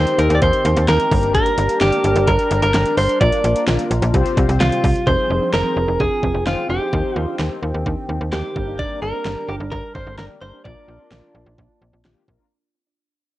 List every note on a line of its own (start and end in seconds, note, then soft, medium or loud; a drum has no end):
0.00 1.10 D#3 medium
0.00 0.44 C4 medium
0.00 1.08 C4 medium
0.00 0.44 D#4 medium
0.00 0.44 G4 medium
0.00 1.10 G4 medium
0.00 0.19 C5 loud
0.00 0.44 C5 medium
0.07 closed hi-hat medium
0.18 0.28 D#2 loud
0.18 0.35 A#4 loud
0.18 closed hi-hat medium
0.30 0.40 D#2 loud
0.30 closed hi-hat medium
0.35 0.42 D5 medium
0.42 0.52 D#2 loud
0.42 0.88 C5 loud
0.42 kick loud
0.42 closed hi-hat medium
0.53 closed hi-hat medium
0.65 0.75 D#2 loud
0.65 closed hi-hat medium
0.76 0.87 D#2 loud
0.76 closed hi-hat medium
0.88 0.98 D#2 loud
0.88 1.34 A#4 loud
0.88 snare loud
0.88 closed hi-hat medium
1.00 closed hi-hat medium
1.11 1.42 G1 loud
1.11 3.19 G3 medium
1.11 1.49 A#3 medium
1.11 1.49 D4 medium
1.11 4.11 D4 medium
1.11 1.49 G4 medium
1.11 1.49 A#4 medium
1.11 3.19 A#4 loud
1.11 kick loud
1.11 open hi-hat medium
1.23 closed hi-hat soft
1.35 1.78 A#4 loud
1.35 kick loud
1.35 closed hi-hat medium
1.46 closed hi-hat medium
1.58 1.68 G1 medium
1.58 2.30 A#3 medium
1.58 2.30 D4 medium
1.58 2.30 G4 medium
1.58 2.30 A#4 medium
1.58 closed hi-hat medium
1.69 closed hi-hat medium
1.81 1.91 G1 loud
1.81 2.29 G4 medium
1.81 snare loud
1.81 closed hi-hat medium
1.93 closed hi-hat medium
2.04 2.15 G1 loud
2.04 closed hi-hat medium
2.16 2.26 G1 loud
2.16 closed hi-hat medium
2.28 2.38 G1 loud
2.28 2.61 A#4 loud
2.28 kick loud
2.28 closed hi-hat medium
2.39 closed hi-hat medium
2.51 2.61 G1 loud
2.51 closed hi-hat medium
2.63 2.73 G1 loud
2.63 2.97 A#4 loud
2.63 closed hi-hat medium
2.74 2.84 G1 loud
2.74 snare loud
2.74 closed hi-hat medium
2.86 closed hi-hat soft
2.98 3.08 G1 loud
2.98 3.20 C5 loud
2.98 open hi-hat medium
3.09 closed hi-hat soft
3.21 3.31 A#1 loud
3.21 4.13 A#3 medium
3.21 3.39 A#3 medium
3.21 3.39 D4 medium
3.21 5.05 F4 medium
3.21 3.39 F4 medium
3.21 3.39 A#4 medium
3.21 3.64 D5 loud
3.21 kick loud
3.21 closed hi-hat medium
3.32 closed hi-hat medium
3.44 3.54 A#1 loud
3.44 4.14 A#3 medium
3.44 4.14 D4 medium
3.44 4.13 F4 medium
3.44 4.14 A#4 medium
3.44 closed hi-hat medium
3.56 closed hi-hat medium
3.68 3.78 A#1 loud
3.68 snare loud
3.68 closed hi-hat medium
3.79 closed hi-hat medium
3.91 4.01 A#1 loud
3.91 closed hi-hat medium
4.02 4.12 A#1 loud
4.02 closed hi-hat medium
4.14 4.24 C2 loud
4.14 5.06 C3 medium
4.14 5.06 G3 medium
4.14 4.88 C4 loud
4.14 4.88 F4 medium
4.14 4.88 G4 medium
4.14 4.88 C5 loud
4.14 kick loud
4.14 closed hi-hat medium
4.26 closed hi-hat medium
4.37 4.47 C2 loud
4.37 kick loud
4.37 closed hi-hat medium
4.49 4.59 C2 loud
4.49 closed hi-hat medium
4.60 4.70 C2 loud
4.60 5.08 F4 medium
4.60 snare loud
4.60 closed hi-hat medium
4.72 closed hi-hat medium
4.84 4.94 C2 loud
4.84 kick loud
4.84 open hi-hat medium
4.96 closed hi-hat soft
5.07 5.17 F1 loud
5.07 6.91 F3 medium
5.07 5.79 C4 medium
5.07 8.52 C4 medium
5.07 5.27 D#4 medium
5.07 5.79 F4 medium
5.07 5.79 G#4 medium
5.07 6.91 G#4 medium
5.07 5.53 C5 loud
5.07 5.79 C5 medium
5.07 kick loud
5.30 5.40 F1 loud
5.30 5.40 D#4 medium
5.42 5.52 D4 medium
5.53 5.63 F1 loud
5.53 5.74 D#4 medium
5.53 6.01 A#4 loud
5.53 snare loud
5.76 5.87 F1 loud
5.76 5.87 F4 medium
5.88 5.98 F1 medium
5.88 5.98 D#4 medium
6.00 6.10 F1 loud
6.00 6.20 D4 medium
6.00 6.43 G#4 loud
6.00 kick medium
6.23 6.33 F1 loud
6.23 6.33 C4 medium
6.23 kick medium
6.34 6.45 F1 medium
6.34 6.45 C4 medium
6.46 6.56 F1 medium
6.46 6.65 C4 medium
6.46 6.67 D#4 medium
6.46 6.69 F4 medium
6.46 6.65 F4 medium
6.46 6.64 G#4 medium
6.46 6.65 C5 medium
6.46 snare loud
6.69 6.80 F1 loud
6.69 6.88 C4 medium
6.69 6.80 D4 medium
6.69 6.88 F4 medium
6.69 7.19 G4 medium
6.69 6.88 G#4 medium
6.69 6.88 C5 medium
6.81 6.91 D#4 medium
6.93 7.03 D#2 loud
6.93 8.54 D#3 medium
6.93 7.65 C4 medium
6.93 7.13 D#4 loud
6.93 7.65 D#4 medium
6.93 8.54 G4 medium
6.93 7.65 G4 medium
6.93 7.65 C5 medium
6.93 kick loud
7.16 7.26 D#2 loud
7.16 7.26 D#4 medium
7.16 7.35 F4 medium
7.28 7.38 D4 medium
7.39 7.49 D#2 loud
7.39 7.60 D#4 medium
7.39 snare loud
7.63 7.73 D#2 loud
7.63 7.73 F4 medium
7.74 7.84 D#2 medium
7.74 7.85 D#4 medium
7.86 7.96 D#2 loud
7.86 8.06 D4 medium
7.86 kick medium
8.09 8.19 D#2 loud
8.09 8.19 C4 medium
8.21 8.31 D#2 loud
8.21 8.31 C4 medium
8.32 8.43 D#2 loud
8.32 8.50 C4 medium
8.32 8.50 D#4 medium
8.32 8.53 D#4 medium
8.32 8.50 G4 medium
8.32 8.80 G4 medium
8.32 8.50 C5 medium
8.32 snare loud
8.56 8.86 G1 loud
8.56 10.63 G3 medium
8.56 9.30 A#3 medium
8.56 8.66 D4 medium
8.56 9.30 D4 medium
8.56 10.63 D4 medium
8.56 9.30 G4 medium
8.56 9.30 A#4 medium
8.56 10.63 A#4 medium
8.56 kick loud
8.67 8.78 D#4 medium
8.79 8.99 D4 medium
8.79 9.01 D5 loud
8.79 kick loud
9.02 9.12 G1 medium
9.02 9.12 D4 medium
9.02 9.50 A#4 medium
9.14 9.24 C4 medium
9.25 9.36 G1 medium
9.25 9.46 D4 medium
9.25 snare loud
9.49 9.59 G1 loud
9.49 9.59 F4 medium
9.49 9.55 G4 medium
9.60 9.70 G1 loud
9.60 9.71 D#4 medium
9.72 9.82 G1 loud
9.72 9.92 D4 medium
9.72 9.95 A#4 loud
9.72 kick medium
9.95 10.05 G1 loud
9.95 10.05 C4 medium
9.95 10.18 C5 medium
9.95 kick medium
10.07 10.17 G1 loud
10.07 10.17 C4 medium
10.18 10.29 G1 loud
10.18 10.37 A#3 medium
10.18 10.39 D4 medium
10.18 10.37 D4 medium
10.18 10.37 G4 medium
10.18 10.24 A#4 medium
10.18 10.37 A#4 medium
10.18 snare loud
10.42 10.52 G1 loud
10.42 10.60 A#3 medium
10.42 10.52 C4 medium
10.42 10.60 D4 medium
10.42 10.60 G4 medium
10.42 10.60 A#4 medium
10.42 10.64 C5 medium
10.53 10.64 D4 medium
10.64 10.75 A#1 loud
10.64 12.49 A#3 medium
10.64 11.37 A#3 medium
10.64 10.85 D4 medium
10.64 12.49 D4 medium
10.64 11.37 D4 medium
10.64 11.37 F4 medium
10.64 12.49 F4 medium
10.64 11.37 A#4 medium
10.64 12.00 D5 medium
10.64 kick loud
10.88 10.98 A#1 medium
10.88 10.99 D4 medium
11.00 11.10 C4 medium
11.11 11.21 A#1 loud
11.11 11.32 D4 medium
11.11 snare loud
11.35 11.45 A#1 loud
11.35 11.45 F4 medium
11.46 11.56 A#1 loud
11.46 11.57 D#4 medium
11.58 11.68 A#1 loud
11.58 11.78 D4 medium
11.58 kick medium
11.81 11.92 A#1 loud
11.81 11.92 C4 medium
11.93 12.03 A#1 medium
11.93 12.03 C4 medium
12.05 12.15 A#1 medium
12.05 12.23 A#3 medium
12.05 12.23 D4 medium
12.05 12.25 D4 medium
12.05 12.23 F4 medium
12.05 12.23 G4 medium
12.05 snare loud
12.28 12.38 A#1 loud
12.28 12.46 A#3 medium
12.28 12.38 C4 medium
12.28 12.46 D4 medium
12.28 12.46 F4 medium
12.28 12.46 A#4 medium
12.28 kick loud
12.40 12.50 D4 medium